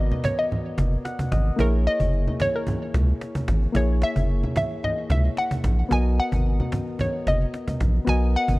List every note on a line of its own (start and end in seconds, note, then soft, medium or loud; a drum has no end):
0.00 0.12 G#1 medium
0.00 1.54 B3 medium
0.00 1.54 F#4 medium
0.00 1.55 A#4 medium
0.00 1.61 D5 medium
0.00 0.26 D#5 loud
0.00 1.30 D#5 medium
0.00 downlifter medium
0.11 high conga medium
0.23 0.37 C#5 loud
0.23 cajon bass loud
0.23 cajon slap loud
0.23 low conga medium
0.37 1.28 D#5 loud
0.37 cajon slap soft
0.50 cajon slap soft
0.50 low conga medium
0.78 0.97 F#1 medium
0.78 cajon bass medium
0.78 cajon slap loud
0.78 high conga medium
0.92 cajon slap soft
1.05 1.30 F#5 medium
1.05 cajon slap medium
1.19 cajon bass loud
1.19 high conga medium
1.32 1.51 G#1 medium
1.32 1.57 D#5 medium
1.32 cajon bass loud
1.32 cajon slap loud
1.32 high conga medium
1.32 low conga medium
1.46 cajon slap soft
1.56 1.88 A#1 loud
1.56 3.70 A#3 medium
1.56 3.71 E4 medium
1.56 3.71 G#4 medium
1.56 1.87 A#4 loud
1.56 cajon bass loud
1.61 3.72 C#5 medium
1.86 2.42 D#5 loud
1.86 cajon slap soft
2.00 2.28 F#1 loud
2.00 cajon bass medium
2.00 high conga medium
2.12 cajon slap soft
2.27 high conga medium
2.40 2.47 C#5 loud
2.40 cajon bass medium
2.40 cajon slap loud
2.40 low conga medium
2.53 3.45 A#4 medium
2.53 cajon slap soft
2.67 cajon bass medium
2.67 low conga medium
2.94 3.13 C#2 loud
2.94 cajon slap loud
2.94 high conga medium
3.08 cajon slap soft
3.21 cajon slap medium
3.35 cajon bass loud
3.35 high conga medium
3.48 3.67 G#1 medium
3.48 cajon slap loud
3.48 high conga medium
3.48 low conga medium
3.63 cajon slap soft
3.73 4.04 A#1 loud
3.73 5.86 A#3 medium
3.73 5.87 E4 medium
3.73 5.88 G#4 medium
3.73 4.01 C#5 medium
3.73 cajon bass loud
3.78 5.89 C#5 medium
4.02 4.56 E5 medium
4.02 cajon slap loud
4.16 4.44 F#1 medium
4.16 cajon bass medium
4.16 high conga medium
4.29 cajon slap soft
4.44 high conga medium
4.56 4.82 E5 loud
4.56 cajon bass medium
4.56 cajon slap loud
4.56 low conga medium
4.70 cajon slap soft
4.83 5.12 D#5 loud
4.83 cajon slap soft
4.83 low conga medium
5.10 5.29 C#2 medium
5.10 5.39 E5 loud
5.10 cajon bass loud
5.10 cajon slap loud
5.10 high conga medium
5.24 cajon slap soft
5.37 5.76 F#5 loud
5.37 cajon slap medium
5.51 cajon bass loud
5.51 high conga medium
5.64 5.83 A#1 medium
5.64 cajon bass loud
5.64 cajon slap loud
5.64 high conga medium
5.64 low conga medium
5.79 cajon slap soft
5.89 6.20 B1 loud
5.89 8.02 B3 medium
5.89 8.03 F#4 medium
5.89 8.04 A#4 medium
5.89 6.17 G#5 loud
5.89 cajon bass loud
5.94 8.05 D#5 medium
6.18 7.02 F#5 loud
6.18 cajon slap soft
6.32 6.61 G#1 medium
6.32 cajon bass medium
6.32 high conga medium
6.45 cajon slap soft
6.60 high conga medium
6.72 cajon bass loud
6.72 cajon slap loud
6.72 low conga medium
6.86 cajon slap soft
6.99 7.28 C#5 medium
6.99 cajon bass medium
6.99 low conga medium
7.26 7.45 F#1 medium
7.26 7.77 D#5 medium
7.26 cajon slap loud
7.26 high conga medium
7.40 cajon slap soft
7.54 cajon slap medium
7.68 cajon bass loud
7.68 high conga medium
7.80 7.99 A#1 medium
7.80 cajon slap loud
7.80 high conga medium
7.80 low conga medium
7.95 cajon slap soft
8.05 8.36 B1 loud
8.05 8.59 B3 medium
8.05 8.59 F#4 medium
8.05 8.59 A#4 medium
8.05 cajon bass loud
8.09 8.59 D#5 medium
8.09 8.33 G#5 loud
8.34 8.59 F#5 loud
8.34 cajon slap soft
8.48 8.59 G#1 medium
8.48 cajon bass medium
8.48 high conga medium